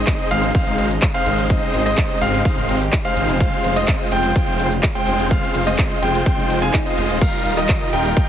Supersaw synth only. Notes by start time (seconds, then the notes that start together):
Already playing: G#3 C4 D#4 C5 D#5
0.31 G#3 C4 D#4 C5 F5
0.55 G#3 C4 D#4 C5 F5
1.14 G#3 C4 D#4 C5 F5
1.50 G#3 C4 D#4 C5 D#5
1.86 G#3 C4 D#4 C5 D#5
2.21 G#3 C4 D#4 C5 F5
2.45 G#3 C4 D#4 C5 F5
3.05 G#3 C4 D#4 C5 F5
3.41 G#3 C4 F4 C5 F5
3.76 G#3 C4 F4 C5 D#5
4.12 G#3 C4 F4 C5 G5
4.36 G#3 C4 F4 C5 G5
4.95 G#3 C4 F4 C5 G5
5.31 G#3 C4 F4 C5 F5
5.67 G#3 C4 F4 C5 D#5
6.02 G#3 C4 F4 C5 G5
6.26 G#3 C4 F4 C5 G5
6.62 G#3 C4 F4 C5 G#5
6.86 G#3 C4 F4 C5 D#5
7.21 G3 D#4 F4 A#4 F5
7.57 G3 D#4 F4 A#4 D#5
7.93 G3 D#4 F4 A#4 G5
8.17 G3 D#4 F4 A#4 G5